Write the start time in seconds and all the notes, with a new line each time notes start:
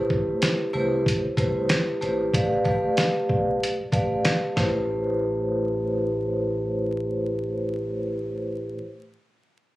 Already playing: A1 A3 E4 G4 B4 C5
0.10 kick
0.42 snare, closed hi-hat
0.73 C2 A3 E4 G4 B4 C5
1.06 kick, closed hi-hat
1.25 muted fingered electric bass stroke
1.37 C2 A3 E4 G4 B4 C5, kick, closed hi-hat
1.69 snare, closed hi-hat
2.01 G#1 A3 E4 G4 B4 C5, closed hi-hat
2.34 A1 A3 G4 B4 D5 F5, kick, closed hi-hat
2.64 A3 G4 B4 D5 F5, kick
2.97 snare, closed hi-hat
3.29 B1, kick
3.63 closed hi-hat
3.80 muted fingered electric bass stroke
3.92 A1 A3 G4 B4 D5 F5, kick, closed hi-hat
4.25 snare, closed hi-hat
4.56 A1 A3 E4 G4 B4 C5, kick, snare